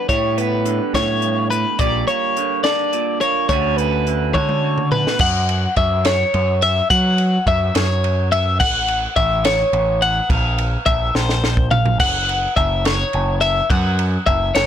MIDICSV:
0, 0, Header, 1, 5, 480
1, 0, Start_track
1, 0, Tempo, 567108
1, 77, Time_signature, 6, 3, 24, 8
1, 12412, End_track
2, 0, Start_track
2, 0, Title_t, "Clean electric guitar"
2, 0, Program_c, 0, 27
2, 76, Note_on_c, 0, 73, 88
2, 322, Note_off_c, 0, 73, 0
2, 322, Note_on_c, 0, 71, 73
2, 801, Note_off_c, 0, 71, 0
2, 804, Note_on_c, 0, 73, 79
2, 1270, Note_off_c, 0, 73, 0
2, 1274, Note_on_c, 0, 71, 71
2, 1515, Note_off_c, 0, 71, 0
2, 1515, Note_on_c, 0, 74, 89
2, 1753, Note_off_c, 0, 74, 0
2, 1757, Note_on_c, 0, 73, 74
2, 2229, Note_off_c, 0, 73, 0
2, 2232, Note_on_c, 0, 74, 82
2, 2713, Note_off_c, 0, 74, 0
2, 2717, Note_on_c, 0, 73, 71
2, 2945, Note_off_c, 0, 73, 0
2, 2955, Note_on_c, 0, 73, 89
2, 3190, Note_off_c, 0, 73, 0
2, 3190, Note_on_c, 0, 71, 73
2, 3671, Note_off_c, 0, 71, 0
2, 3675, Note_on_c, 0, 73, 71
2, 4159, Note_off_c, 0, 73, 0
2, 4162, Note_on_c, 0, 71, 73
2, 4403, Note_off_c, 0, 71, 0
2, 4407, Note_on_c, 0, 78, 87
2, 4882, Note_off_c, 0, 78, 0
2, 4885, Note_on_c, 0, 76, 75
2, 5124, Note_off_c, 0, 76, 0
2, 5125, Note_on_c, 0, 73, 81
2, 5604, Note_off_c, 0, 73, 0
2, 5609, Note_on_c, 0, 76, 84
2, 5839, Note_off_c, 0, 76, 0
2, 5843, Note_on_c, 0, 78, 98
2, 6322, Note_off_c, 0, 78, 0
2, 6328, Note_on_c, 0, 76, 85
2, 6559, Note_off_c, 0, 76, 0
2, 6559, Note_on_c, 0, 73, 89
2, 7038, Note_off_c, 0, 73, 0
2, 7042, Note_on_c, 0, 76, 82
2, 7275, Note_off_c, 0, 76, 0
2, 7278, Note_on_c, 0, 78, 100
2, 7752, Note_off_c, 0, 78, 0
2, 7755, Note_on_c, 0, 76, 84
2, 7997, Note_off_c, 0, 76, 0
2, 8000, Note_on_c, 0, 73, 94
2, 8479, Note_off_c, 0, 73, 0
2, 8482, Note_on_c, 0, 78, 77
2, 8716, Note_off_c, 0, 78, 0
2, 8716, Note_on_c, 0, 77, 104
2, 9188, Note_off_c, 0, 77, 0
2, 9191, Note_on_c, 0, 76, 81
2, 9438, Note_off_c, 0, 76, 0
2, 9438, Note_on_c, 0, 72, 87
2, 9909, Note_off_c, 0, 72, 0
2, 9913, Note_on_c, 0, 77, 78
2, 10154, Note_off_c, 0, 77, 0
2, 10157, Note_on_c, 0, 78, 95
2, 10631, Note_off_c, 0, 78, 0
2, 10634, Note_on_c, 0, 76, 80
2, 10877, Note_off_c, 0, 76, 0
2, 10877, Note_on_c, 0, 73, 90
2, 11346, Note_off_c, 0, 73, 0
2, 11350, Note_on_c, 0, 76, 77
2, 11593, Note_off_c, 0, 76, 0
2, 11593, Note_on_c, 0, 78, 89
2, 12071, Note_off_c, 0, 78, 0
2, 12074, Note_on_c, 0, 76, 74
2, 12313, Note_on_c, 0, 73, 85
2, 12315, Note_off_c, 0, 76, 0
2, 12412, Note_off_c, 0, 73, 0
2, 12412, End_track
3, 0, Start_track
3, 0, Title_t, "Clean electric guitar"
3, 0, Program_c, 1, 27
3, 0, Note_on_c, 1, 50, 59
3, 0, Note_on_c, 1, 55, 47
3, 0, Note_on_c, 1, 62, 54
3, 87, Note_on_c, 1, 45, 69
3, 91, Note_off_c, 1, 55, 0
3, 94, Note_on_c, 1, 55, 54
3, 316, Note_on_c, 1, 59, 59
3, 544, Note_off_c, 1, 50, 0
3, 554, Note_on_c, 1, 50, 58
3, 564, Note_off_c, 1, 45, 0
3, 788, Note_on_c, 1, 42, 56
3, 1027, Note_off_c, 1, 42, 0
3, 1031, Note_on_c, 1, 43, 60
3, 1276, Note_off_c, 1, 43, 0
3, 1283, Note_on_c, 1, 45, 57
3, 1491, Note_off_c, 1, 59, 0
3, 1510, Note_off_c, 1, 45, 0
3, 1513, Note_on_c, 1, 46, 69
3, 1516, Note_off_c, 1, 55, 0
3, 1526, Note_on_c, 1, 55, 55
3, 1763, Note_on_c, 1, 58, 61
3, 1998, Note_off_c, 1, 46, 0
3, 1999, Note_off_c, 1, 50, 0
3, 2010, Note_on_c, 1, 50, 55
3, 2256, Note_off_c, 1, 62, 0
3, 2259, Note_on_c, 1, 62, 63
3, 2486, Note_on_c, 1, 46, 67
3, 2713, Note_off_c, 1, 58, 0
3, 2723, Note_on_c, 1, 58, 54
3, 2934, Note_off_c, 1, 58, 0
3, 2935, Note_off_c, 1, 46, 0
3, 2959, Note_off_c, 1, 50, 0
3, 2965, Note_off_c, 1, 55, 0
3, 2965, Note_on_c, 1, 38, 69
3, 2971, Note_off_c, 1, 62, 0
3, 2971, Note_on_c, 1, 50, 49
3, 2977, Note_on_c, 1, 57, 57
3, 2984, Note_on_c, 1, 61, 55
3, 2989, Note_on_c, 1, 66, 66
3, 3204, Note_off_c, 1, 61, 0
3, 3214, Note_on_c, 1, 61, 63
3, 3443, Note_off_c, 1, 50, 0
3, 3453, Note_on_c, 1, 50, 58
3, 3914, Note_off_c, 1, 38, 0
3, 3924, Note_on_c, 1, 38, 61
3, 4163, Note_off_c, 1, 38, 0
3, 4168, Note_on_c, 1, 40, 52
3, 4380, Note_off_c, 1, 61, 0
3, 4382, Note_off_c, 1, 57, 0
3, 4387, Note_off_c, 1, 66, 0
3, 4406, Note_off_c, 1, 40, 0
3, 4408, Note_off_c, 1, 50, 0
3, 12412, End_track
4, 0, Start_track
4, 0, Title_t, "Picked electric bass"
4, 0, Program_c, 2, 34
4, 78, Note_on_c, 2, 45, 88
4, 667, Note_off_c, 2, 45, 0
4, 795, Note_on_c, 2, 45, 79
4, 1386, Note_off_c, 2, 45, 0
4, 1519, Note_on_c, 2, 34, 86
4, 1716, Note_off_c, 2, 34, 0
4, 2959, Note_on_c, 2, 38, 92
4, 3680, Note_off_c, 2, 38, 0
4, 3680, Note_on_c, 2, 50, 83
4, 4270, Note_off_c, 2, 50, 0
4, 4400, Note_on_c, 2, 42, 93
4, 4793, Note_off_c, 2, 42, 0
4, 4881, Note_on_c, 2, 42, 93
4, 5274, Note_off_c, 2, 42, 0
4, 5369, Note_on_c, 2, 42, 104
4, 5758, Note_off_c, 2, 42, 0
4, 5845, Note_on_c, 2, 54, 102
4, 6235, Note_off_c, 2, 54, 0
4, 6318, Note_on_c, 2, 42, 92
4, 6515, Note_off_c, 2, 42, 0
4, 6564, Note_on_c, 2, 42, 88
4, 7281, Note_off_c, 2, 42, 0
4, 7281, Note_on_c, 2, 33, 97
4, 7673, Note_off_c, 2, 33, 0
4, 7760, Note_on_c, 2, 33, 94
4, 8152, Note_off_c, 2, 33, 0
4, 8236, Note_on_c, 2, 33, 95
4, 8629, Note_off_c, 2, 33, 0
4, 8714, Note_on_c, 2, 34, 98
4, 9108, Note_off_c, 2, 34, 0
4, 9201, Note_on_c, 2, 34, 92
4, 9396, Note_off_c, 2, 34, 0
4, 9436, Note_on_c, 2, 34, 93
4, 10155, Note_off_c, 2, 34, 0
4, 10155, Note_on_c, 2, 30, 99
4, 10548, Note_off_c, 2, 30, 0
4, 10638, Note_on_c, 2, 30, 97
4, 11030, Note_off_c, 2, 30, 0
4, 11125, Note_on_c, 2, 30, 92
4, 11514, Note_off_c, 2, 30, 0
4, 11595, Note_on_c, 2, 42, 98
4, 11988, Note_off_c, 2, 42, 0
4, 12081, Note_on_c, 2, 30, 94
4, 12275, Note_off_c, 2, 30, 0
4, 12321, Note_on_c, 2, 30, 94
4, 12412, Note_off_c, 2, 30, 0
4, 12412, End_track
5, 0, Start_track
5, 0, Title_t, "Drums"
5, 76, Note_on_c, 9, 36, 96
5, 77, Note_on_c, 9, 42, 82
5, 161, Note_off_c, 9, 36, 0
5, 162, Note_off_c, 9, 42, 0
5, 321, Note_on_c, 9, 42, 62
5, 405, Note_off_c, 9, 42, 0
5, 555, Note_on_c, 9, 42, 57
5, 639, Note_off_c, 9, 42, 0
5, 799, Note_on_c, 9, 36, 69
5, 801, Note_on_c, 9, 42, 83
5, 809, Note_on_c, 9, 38, 106
5, 884, Note_off_c, 9, 36, 0
5, 886, Note_off_c, 9, 42, 0
5, 894, Note_off_c, 9, 38, 0
5, 1032, Note_on_c, 9, 42, 55
5, 1117, Note_off_c, 9, 42, 0
5, 1283, Note_on_c, 9, 42, 63
5, 1367, Note_off_c, 9, 42, 0
5, 1513, Note_on_c, 9, 42, 83
5, 1518, Note_on_c, 9, 36, 103
5, 1598, Note_off_c, 9, 42, 0
5, 1603, Note_off_c, 9, 36, 0
5, 1760, Note_on_c, 9, 42, 54
5, 1844, Note_off_c, 9, 42, 0
5, 2002, Note_on_c, 9, 42, 56
5, 2086, Note_off_c, 9, 42, 0
5, 2233, Note_on_c, 9, 42, 73
5, 2241, Note_on_c, 9, 38, 103
5, 2318, Note_off_c, 9, 42, 0
5, 2325, Note_off_c, 9, 38, 0
5, 2479, Note_on_c, 9, 42, 54
5, 2563, Note_off_c, 9, 42, 0
5, 2716, Note_on_c, 9, 42, 59
5, 2800, Note_off_c, 9, 42, 0
5, 2954, Note_on_c, 9, 42, 79
5, 2955, Note_on_c, 9, 36, 113
5, 3039, Note_off_c, 9, 42, 0
5, 3040, Note_off_c, 9, 36, 0
5, 3202, Note_on_c, 9, 42, 51
5, 3286, Note_off_c, 9, 42, 0
5, 3442, Note_on_c, 9, 42, 52
5, 3527, Note_off_c, 9, 42, 0
5, 3680, Note_on_c, 9, 36, 68
5, 3685, Note_on_c, 9, 48, 56
5, 3765, Note_off_c, 9, 36, 0
5, 3769, Note_off_c, 9, 48, 0
5, 3799, Note_on_c, 9, 48, 55
5, 3884, Note_off_c, 9, 48, 0
5, 4043, Note_on_c, 9, 45, 55
5, 4128, Note_off_c, 9, 45, 0
5, 4161, Note_on_c, 9, 43, 88
5, 4246, Note_off_c, 9, 43, 0
5, 4293, Note_on_c, 9, 38, 77
5, 4377, Note_off_c, 9, 38, 0
5, 4393, Note_on_c, 9, 49, 127
5, 4399, Note_on_c, 9, 36, 124
5, 4477, Note_off_c, 9, 49, 0
5, 4484, Note_off_c, 9, 36, 0
5, 4645, Note_on_c, 9, 51, 74
5, 4730, Note_off_c, 9, 51, 0
5, 4879, Note_on_c, 9, 51, 78
5, 4884, Note_on_c, 9, 36, 77
5, 4963, Note_off_c, 9, 51, 0
5, 4968, Note_off_c, 9, 36, 0
5, 5118, Note_on_c, 9, 51, 100
5, 5126, Note_on_c, 9, 38, 110
5, 5203, Note_off_c, 9, 51, 0
5, 5210, Note_off_c, 9, 38, 0
5, 5364, Note_on_c, 9, 51, 81
5, 5449, Note_off_c, 9, 51, 0
5, 5604, Note_on_c, 9, 51, 81
5, 5689, Note_off_c, 9, 51, 0
5, 5843, Note_on_c, 9, 36, 119
5, 5843, Note_on_c, 9, 51, 108
5, 5928, Note_off_c, 9, 36, 0
5, 5928, Note_off_c, 9, 51, 0
5, 6078, Note_on_c, 9, 51, 71
5, 6162, Note_off_c, 9, 51, 0
5, 6321, Note_on_c, 9, 36, 78
5, 6322, Note_on_c, 9, 51, 74
5, 6406, Note_off_c, 9, 36, 0
5, 6407, Note_off_c, 9, 51, 0
5, 6559, Note_on_c, 9, 51, 100
5, 6567, Note_on_c, 9, 38, 118
5, 6644, Note_off_c, 9, 51, 0
5, 6652, Note_off_c, 9, 38, 0
5, 6805, Note_on_c, 9, 51, 76
5, 6890, Note_off_c, 9, 51, 0
5, 7045, Note_on_c, 9, 51, 87
5, 7130, Note_off_c, 9, 51, 0
5, 7285, Note_on_c, 9, 36, 119
5, 7285, Note_on_c, 9, 57, 117
5, 7369, Note_off_c, 9, 36, 0
5, 7370, Note_off_c, 9, 57, 0
5, 7519, Note_on_c, 9, 51, 78
5, 7603, Note_off_c, 9, 51, 0
5, 7755, Note_on_c, 9, 51, 79
5, 7758, Note_on_c, 9, 36, 75
5, 7840, Note_off_c, 9, 51, 0
5, 7843, Note_off_c, 9, 36, 0
5, 7995, Note_on_c, 9, 51, 120
5, 8003, Note_on_c, 9, 38, 116
5, 8080, Note_off_c, 9, 51, 0
5, 8087, Note_off_c, 9, 38, 0
5, 8237, Note_on_c, 9, 51, 78
5, 8321, Note_off_c, 9, 51, 0
5, 8481, Note_on_c, 9, 51, 91
5, 8566, Note_off_c, 9, 51, 0
5, 8717, Note_on_c, 9, 36, 123
5, 8719, Note_on_c, 9, 51, 116
5, 8802, Note_off_c, 9, 36, 0
5, 8804, Note_off_c, 9, 51, 0
5, 8958, Note_on_c, 9, 51, 78
5, 9043, Note_off_c, 9, 51, 0
5, 9191, Note_on_c, 9, 51, 76
5, 9197, Note_on_c, 9, 36, 81
5, 9276, Note_off_c, 9, 51, 0
5, 9281, Note_off_c, 9, 36, 0
5, 9439, Note_on_c, 9, 38, 72
5, 9523, Note_off_c, 9, 38, 0
5, 9559, Note_on_c, 9, 38, 64
5, 9643, Note_off_c, 9, 38, 0
5, 9681, Note_on_c, 9, 38, 85
5, 9765, Note_off_c, 9, 38, 0
5, 9794, Note_on_c, 9, 36, 83
5, 9878, Note_off_c, 9, 36, 0
5, 9913, Note_on_c, 9, 43, 109
5, 9998, Note_off_c, 9, 43, 0
5, 10034, Note_on_c, 9, 43, 98
5, 10119, Note_off_c, 9, 43, 0
5, 10156, Note_on_c, 9, 36, 124
5, 10156, Note_on_c, 9, 51, 107
5, 10156, Note_on_c, 9, 57, 118
5, 10240, Note_off_c, 9, 36, 0
5, 10240, Note_off_c, 9, 51, 0
5, 10240, Note_off_c, 9, 57, 0
5, 10403, Note_on_c, 9, 51, 72
5, 10488, Note_off_c, 9, 51, 0
5, 10639, Note_on_c, 9, 36, 82
5, 10639, Note_on_c, 9, 51, 66
5, 10724, Note_off_c, 9, 36, 0
5, 10724, Note_off_c, 9, 51, 0
5, 10878, Note_on_c, 9, 51, 99
5, 10886, Note_on_c, 9, 38, 112
5, 10963, Note_off_c, 9, 51, 0
5, 10971, Note_off_c, 9, 38, 0
5, 11114, Note_on_c, 9, 51, 72
5, 11198, Note_off_c, 9, 51, 0
5, 11357, Note_on_c, 9, 51, 84
5, 11442, Note_off_c, 9, 51, 0
5, 11599, Note_on_c, 9, 36, 127
5, 11601, Note_on_c, 9, 51, 113
5, 11683, Note_off_c, 9, 36, 0
5, 11686, Note_off_c, 9, 51, 0
5, 11839, Note_on_c, 9, 51, 77
5, 11923, Note_off_c, 9, 51, 0
5, 12078, Note_on_c, 9, 36, 82
5, 12085, Note_on_c, 9, 51, 73
5, 12162, Note_off_c, 9, 36, 0
5, 12170, Note_off_c, 9, 51, 0
5, 12318, Note_on_c, 9, 51, 108
5, 12325, Note_on_c, 9, 38, 119
5, 12402, Note_off_c, 9, 51, 0
5, 12410, Note_off_c, 9, 38, 0
5, 12412, End_track
0, 0, End_of_file